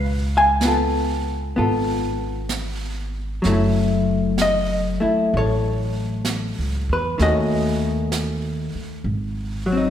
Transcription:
Already playing: C#2 B4 F5
0.37 F5 G#5
0.61 B3, brush sweep, snare, hi-hat pedal
0.65 F4 A4
1.54 G#1 B3 F4, brush sweep
1.59 A4
2.49 brush sweep, snare, hi-hat pedal
3.42 F#1 F#3, brush sweep, snare
3.46 A3 E4
4.38 D#5, brush sweep, snare, hi-hat pedal
5.00 A3 E4, muted upright bass stroke
5.31 A1, brush sweep
5.37 A4 C#5
6.25 brush sweep, snare, hi-hat pedal
6.59 C#2
6.89 E2 B4
7.18 D#2 D#3 A3 C#4, brush sweep, snare
7.22 F#4 D#5
8.12 brush sweep, snare, hi-hat pedal
8.75 muted upright bass stroke
9.04 G#1, brush sweep
9.66 F#3
9.72 C4
9.77 D#4

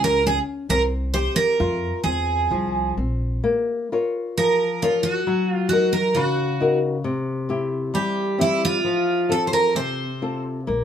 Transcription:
Already playing: C#2 C#4
0.04 A#4
0.26 C#4 G#4
0.69 C2 C4 A#4
1.14 G4 C5
1.36 A#4
1.60 F2 F4
2.04 E2 C4 G#4
2.51 C2 F3
2.97 A#1 C4
3.44 A#3
3.92 F4 A#4 C#5
4.38 F3 A#4
4.82 F4 A#4 C#5
5.03 F#4
5.27 F#3
5.51 F4
5.69 D#4 F#4 A#4
5.93 A#4
6.15 C#3 F#4
6.60 D#4 F#4 A#4
7.04 C3
7.49 C4 E4 G4
7.94 G3 G4
8.38 C4 E4 G4
8.65 F4
8.84 F3
9.29 C4 F4 A4
9.47 C5
9.53 A#4
9.75 C3 C5
10.22 C4 F4 A4
10.67 A#1 A#3

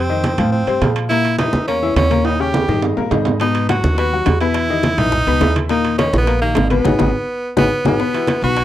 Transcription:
Already playing: F2 C4
0.10 D#3 D#4 D#5, high conga
0.24 high conga, high timbale, low timbale
0.38 A2 F3 F4 F5, low conga, high timbale
0.52 C4, high conga
0.67 G2 C3 C4 C5, high conga, high timbale
0.82 A#2 F3 F4 F5, high conga, high timbale, low timbale
0.96 high timbale
1.09 A#2 A#3 E4 A#4, high conga, high timbale
1.24 high conga, high timbale
1.39 E3 D#4 E4 E5, high conga, high timbale, low timbale
1.53 E2, high conga
1.67 A#3 C#4 A#4 A#5, high conga, high timbale
1.82 E3 E4 E5, high conga
1.96 D#2 C#4, high conga, high timbale, low timbale
2.10 A#2 A#3 A#4, high conga, high timbale
2.25 D#4, high conga, high timbale
2.40 C#3 C#4 G4 C#5, high conga
2.54 high conga, low timbale
2.68 G2 D#3 D#4 D#5, low conga
2.82 high conga, low timbale
2.97 G2 A#2 A#3 A#4, high conga, low timbale
3.11 G#2 D#3 D#4 D#5, high conga, low timbale
3.25 high conga, low timbale
3.40 B2 B3 D#4 B4, high bongo, high conga, high timbale
3.55 high bongo, high conga, high timbale
3.69 F#3 F#4 F#5, high bongo, high conga, high timbale, low timbale
3.84 D#2, high bongo, high conga
3.98 B3 F#4 B4 B5, high bongo, high conga, high timbale
4.13 F#3 F#4 F#5, high conga
4.26 E2, high bongo, low bongo, high conga, high timbale, low timbale
4.40 B2 B3 E4 B4, high bongo, high timbale
4.54 high bongo, high conga, high timbale
4.69 D#3 D#4 D#5, high bongo, high conga
4.83 high bongo, high conga, high timbale, low timbale
4.98 B1 E3 D#4 E4 E5, high bongo, low conga, high timbale
5.12 high bongo, high conga, low conga
5.27 C#2 B2 B3 B4, high conga, high timbale
5.41 D#2 E3 E4 E5, high bongo, low bongo, high conga, high timbale, low timbale
5.55 high bongo, high conga, high timbale
5.69 A#2 A#3 D#4 A#4, high bongo, high conga, high timbale
5.85 high bongo, high conga, high timbale
5.98 D#3 C#4 D#4 D#5, high bongo, high conga, high timbale, low timbale
6.13 A#1, high conga
6.17 B3
6.27 A#3 A#4 A#5, high bongo, high timbale
6.41 D#3 A#3 D#4 D#5, high conga
6.55 G#1, high bongo, low bongo, high conga, high timbale, low timbale
6.70 B2 B3 B4, high bongo, high conga, high timbale
6.84 G#1 D#4 F#4 G#4, high bongo, high conga, high timbale
6.98 G#1 D#4 F#4 G#4, high bongo, high conga, high timbale
7.57 G#1 B3 D#4 F#4 G#4, high bongo, high conga, high timbale
7.85 G#1 B3 D#4 F#4 G#4, high bongo, high conga, high timbale
8.00 B2 B3 B4, high bongo, high conga
8.14 E3 E4 F#4, high bongo, high conga, high timbale
8.27 high bongo, high conga, high timbale
8.42 B1 B2 B3 F#4 B4, high bongo, high conga
8.57 high bongo, high conga, high timbale

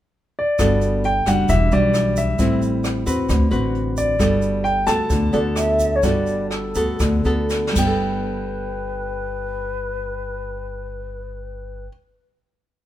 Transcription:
0.39 D5
0.59 G1 G3 B3 F#4 A4, kick, cross-stick, closed hi-hat, shaker
0.81 closed hi-hat, shaker
1.04 G5, closed hi-hat
1.26 F#1 G3 D4 F#4 F#5, kick, cross-stick, closed hi-hat, shaker
1.49 E1 E3 E5, kick, closed hi-hat, shaker
1.71 B1 G3 D4 F#4 D5, closed hi-hat, shaker
1.94 cross-stick, closed hi-hat, shaker
2.16 E5, kick, closed hi-hat, shaker
2.38 A1 A2 G3 C4 E4, kick, closed hi-hat, shaker
2.62 closed hi-hat, shaker
2.84 cross-stick, closed hi-hat, shaker
3.06 E2 C4 F#4 B4, kick, closed hi-hat, shaker
3.29 D2 D3, kick, cross-stick, closed hi-hat, shaker
3.51 A1 C4 F#4 B4, closed hi-hat, shaker
3.75 closed hi-hat
3.97 D5, kick, closed hi-hat, shaker
4.19 G1 G3 B3 F#4 A4, kick, cross-stick, closed hi-hat, shaker
4.42 closed hi-hat, shaker
4.64 G5, closed hi-hat
4.86 D2 B3 F#4 A4 A5, kick, cross-stick, closed hi-hat, shaker
5.10 D2 D3, kick, closed hi-hat, shaker
5.33 D2 B3 F#4 A4 D5, closed hi-hat, shaker
5.56 E5, cross-stick, closed hi-hat, shaker
5.79 kick, closed hi-hat, shaker
5.96 C#5
6.03 G1 G3 B3 F#4 A4 D5, kick, closed hi-hat, shaker
6.27 closed hi-hat, shaker
6.51 A4, cross-stick, closed hi-hat
6.75 D2 B3 F#4 A4, kick, closed hi-hat, shaker
7.00 D2 D3, kick, cross-stick, closed hi-hat, shaker
7.24 D2 B3 F#4 A4, closed hi-hat, shaker
7.50 snare, shaker
7.67 snare
7.72 G3
7.76 G1 B3 B4 G5, kick, crash, shaker
7.87 A4

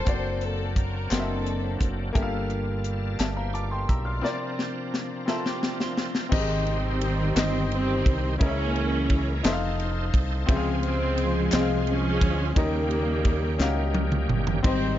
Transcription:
Already playing: A4 C5
0.05 F#1 F#3 A#3 C4 D4 F#4 D5, kick, closed hi-hat
0.41 A4, closed hi-hat
0.76 A#4, kick, closed hi-hat
1.10 F#1 A#3 C4 D4 F#4 A4 D#5, snare, clap, closed hi-hat
1.19 E5
1.46 closed hi-hat
1.81 F#1, kick, closed hi-hat
2.13 G1 G2 G3 A#3 F4 G4 G#4 A4 E5, kick, closed hi-hat
2.22 A4 F5
2.50 closed hi-hat
2.84 closed hi-hat
3.20 G1 E5 A5, snare, clap, closed hi-hat
3.36 E4 C5 F5 A#5
3.53 F4 D5 A5 D6, closed hi-hat
3.71 A4 F5 G5 C6
3.88 B1 G4 E5 A#5 E6, kick, closed hi-hat
4.05 F4 D5 C6 F6
4.21 C3 F3 C4 D4 F4 A4 A#4 D5, snare
4.28 A#4
4.59 snare
4.94 snare
5.26 C4 F4 A4 A#4 E5, snare
5.46 G4, snare
5.63 snare
5.80 F4, snare
5.98 snare
6.15 snare
6.29 G#1 G#2 D#3 C4 D#4 G4 C5, kick, crash
6.33 C3 D#3 G#3 D#5
6.67 D#3 G3 C4, ride
7.01 ride
7.35 G1 C4 D#4 G4 C5 D#5, snare, clap, ride
7.71 D#3 G3 C4, ride
8.06 C2, kick, ride
8.38 C#2 C#3 G#3 A#3 C#4 E4 G#4 A#4 D#5, kick, ride
8.42 E3 A#3
8.48 E5
8.76 ride
9.10 kick, ride
9.43 F1 D#4 A4 C5 E5, snare, clap, ride
9.53 F5
9.80 ride
10.14 C2, kick, ride
10.47 C#2 C3 F3 G#3 C4 F4 G#4 C5 E5, kick, ride
10.56 F5
10.83 F3 G#3 C4, ride
11.18 ride
11.51 C2 G#3 C4 F4 G#4 C5 D#5, snare, clap, ride
11.61 F5
11.87 F3 G#3 C#4, ride
12.21 D2, kick, ride
12.55 D#2 C#3 D#3 G3 A#3 C#4 D#4 F#4 G4 A#4 D#5, kick, ride
12.65 G4
12.91 ride
13.25 kick, ride
13.59 C#2 C#4 D#4 F#4 A#4 F5, snare, clap
13.67 G4
13.94 high tom
14.12 mid tom
14.29 G1, mid tom
14.47 floor tom
14.63 G#1 G#2 G3 C4 D#4 G4 C5 D#5, kick, ride
14.67 D#3

